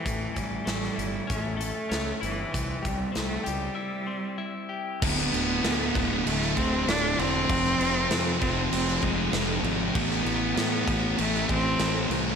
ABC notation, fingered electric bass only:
X:1
M:4/4
L:1/8
Q:1/4=97
K:Ddor
V:1 name="Fingered electric bass" clef=bass
A,,, A,,, A,,, G,,, A,,,2 ^C,, G,,, | C,, C,, C,, ^C,, z4 | D,,, D,,, D,, D,,, D,,, D,,, D,,, E,,, | F,,, F,,, F,, F,,, F,,, F,,, F,,, _A,,, |
A,,, A,,, A,, A,,, A,,, A,,, A,,, C,, |]